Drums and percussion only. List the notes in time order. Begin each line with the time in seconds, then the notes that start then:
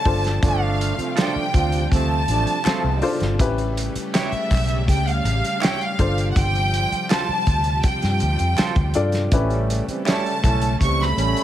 0.05 kick, open hi-hat
0.24 snare, closed hi-hat
0.43 kick, closed hi-hat
0.81 closed hi-hat
0.99 closed hi-hat
1.17 snare, clap, closed hi-hat
1.54 kick, closed hi-hat
1.72 closed hi-hat
1.92 kick, closed hi-hat
2.28 closed hi-hat
2.47 closed hi-hat
2.65 snare, clap, closed hi-hat
3.02 open hi-hat
3.20 snare, closed hi-hat
3.39 kick, closed hi-hat
3.58 closed hi-hat
3.77 closed hi-hat
3.96 closed hi-hat
4.14 snare, clap, closed hi-hat
4.32 closed hi-hat
4.51 kick, clap, open hi-hat
4.68 closed hi-hat
4.88 kick, closed hi-hat
5.08 closed hi-hat
5.25 closed hi-hat
5.44 closed hi-hat
5.61 snare, clap, closed hi-hat
5.81 closed hi-hat
5.99 kick, closed hi-hat
6.18 closed hi-hat
6.36 kick, closed hi-hat
6.55 closed hi-hat
6.74 closed hi-hat
6.92 closed hi-hat
7.10 snare, clap, closed hi-hat
7.47 kick, closed hi-hat
7.64 closed hi-hat
7.83 kick, closed hi-hat
8.02 snare, closed hi-hat
8.20 closed hi-hat
8.39 closed hi-hat
8.58 snare, clap, closed hi-hat
8.76 kick, closed hi-hat
8.94 closed hi-hat
9.12 snare, closed hi-hat
9.32 kick, closed hi-hat
9.50 closed hi-hat
9.70 closed hi-hat
9.89 closed hi-hat
10.06 snare, clap, closed hi-hat
10.26 closed hi-hat
10.44 kick, clap, closed hi-hat
10.62 closed hi-hat
10.81 kick, closed hi-hat
11.02 snare
11.18 closed hi-hat
11.37 closed hi-hat